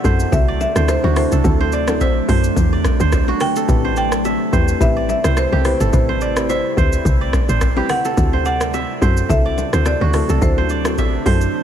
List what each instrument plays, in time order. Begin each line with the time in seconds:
Already playing: ambient pad C3 F#3 A3 D4, kora G4 A4 D5 E5, marimba F#5
0.04 log drum bass F#2, synth pluck C4 E4 F#4 A4, kora C5, kick, shaker
0.20 shaker
0.32 log drum bass C2, synth pluck C4 E4 F#4 A4, marimba E5, kick, low conga, shaker
0.48 kora D5
0.61 marimba E5, low bongo, shaker
0.75 log drum bass D2, synth pluck C4 E4 F#4 A4, kora C5, cross-stick, shaker
0.88 marimba C5, cross-stick, high bongo, shaker
1.04 log drum bass D2, kora F#4, low bongo
1.16 synth pluck C4 E4 F#4 A4, marimba C5, cross-stick, open hi-hat, low conga, shaker
1.32 log drum bass C2, kora A4, high bongo, shaker
1.44 log drum bass D2, synth pluck C4 E4 F#4 A4, kick, low conga, shaker
1.60 kora C5, low bongo
1.72 kora D5, marimba D5, shaker
1.87 synth pluck C4 E4 F#4 A4, cross-stick, low bongo, shaker
2.00 marimba C5, kora E5, kick, high bongo, shaker
2.28 log drum bass F#2, synth pluck C4 E4 F#4 A4, kora C5, kick, open hi-hat, shaker
2.44 shaker
2.56 log drum bass E2, kick, low conga, shaker
2.73 kora D5
2.84 kick, cross-stick, low bongo, shaker
3.00 log drum bass D2, kora C5, shaker
3.12 kick, cross-stick, high bongo, shaker
3.28 kora F#4, low bongo
3.40 marimba G5, cross-stick, open hi-hat, low conga, shaker
3.56 kora A4, high bongo, shaker
3.68 log drum bass A1, ambient pad G3 E4, synth pluck C4 E4 G4 B4, kick, low conga, shaker
3.85 kora C5, low bongo
3.96 kora D5, marimba G5, shaker
4.12 cross-stick, shaker
4.25 kora E5, high bongo, shaker
4.52 log drum bass E2, synth pluck C4 E4 G4 B4, kora C5, kick, shaker
4.68 shaker
4.80 log drum bass A1, synth pluck C4 E4 G4 B4, marimba E5, kick, low conga, shaker
4.97 kora D5
5.09 marimba E5, low bongo, shaker
5.24 log drum bass C2, synth pluck C4 E4 G4 B4, kora C5, cross-stick, shaker
5.37 marimba C5, cross-stick, high bongo, shaker
5.52 log drum bass C2, kora G4, low bongo
5.65 synth pluck C4 E4 G4 B4, marimba C5, cross-stick, open hi-hat, low conga, shaker
5.80 log drum bass G1, kora A4, high bongo, shaker
5.93 log drum bass A1, synth pluck C4 E4 G4 B4, marimba C5, kick, low conga, shaker
6.09 kora C5, low bongo
6.21 kora D5, marimba D5, shaker
6.36 synth pluck C4 E4 G4 B4, cross-stick, shaker
6.49 marimba C5, kora E5, high bongo, shaker
6.77 log drum bass D2, synth pluck C4 E4 G4 B4, kora C5, kick, shaker
6.93 shaker
7.05 log drum bass C2, kick, low conga, shaker
7.21 kora D5
7.33 kick, cross-stick, low bongo, shaker
7.49 log drum bass A1, kora C5, shaker
7.61 kick, cross-stick, high bongo, shaker
7.76 synth pluck C4 E4 G4 B4, kora G4, low bongo
7.89 marimba F#5, cross-stick, open hi-hat, low conga, shaker
8.05 kora A4, high bongo, shaker
8.17 log drum bass D2, ambient pad F#3 A3 D4, synth pluck C4 E4 F#4 A4, kick, low conga, shaker
8.33 kora C5, low bongo
8.45 kora D5, marimba F#5, shaker
8.61 cross-stick, shaker
8.74 kora E5, high bongo, shaker
9.01 log drum bass F#2, synth pluck C4 E4 F#4 A4, kora C5, kick, shaker
9.17 shaker
9.29 log drum bass C2, synth pluck C4 E4 F#4 A4, marimba E5, kick, low conga, shaker
9.46 kora D5
9.58 low bongo, shaker
9.73 log drum bass D2, synth pluck C4 E4 F#4 A4, kora C5, cross-stick, shaker
9.86 marimba D5, cross-stick, high bongo, shaker
10.01 log drum bass D2, kora F#4, low bongo
10.13 synth pluck C4 E4 F#4 A4, cross-stick, open hi-hat, low conga, shaker
10.29 log drum bass C2, kora A4, high bongo, shaker
10.41 log drum bass D2, synth pluck C4 E4 F#4 A4, marimba C5, kick, low conga, shaker
10.58 kora C5, low bongo
10.69 kora D5, shaker
10.85 synth pluck C4 E4 F#4 A4, cross-stick, shaker
10.98 kora E5, kick, high bongo, shaker
11.26 log drum bass F#2, synth pluck C4 E4 F#4 A4, kora C5, kick, open hi-hat, shaker
11.41 shaker